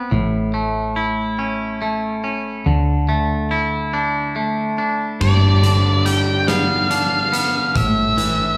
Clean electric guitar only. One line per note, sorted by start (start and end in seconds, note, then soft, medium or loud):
0.00 0.12 B3 medium
0.00 0.12 C4 soft
0.00 0.96 E4 medium
0.11 2.24 A2 medium
0.54 1.80 A3 medium
0.96 2.66 E4 medium
1.39 2.23 C#4 soft
1.82 2.67 A3 medium
2.24 2.66 C#4 soft
2.66 4.79 D3 medium
3.09 4.35 A3 medium
3.51 5.21 E4 medium
3.93 4.77 D4 medium
4.36 5.21 A3 medium
4.78 5.21 D4 medium
5.21 7.33 G2 medium
5.63 7.75 D3 medium
6.05 7.75 G3 soft
6.48 7.31 B3 medium
6.90 7.75 D4 medium
7.33 7.75 B3 medium
7.75 8.57 A2 medium
8.17 8.57 E3 medium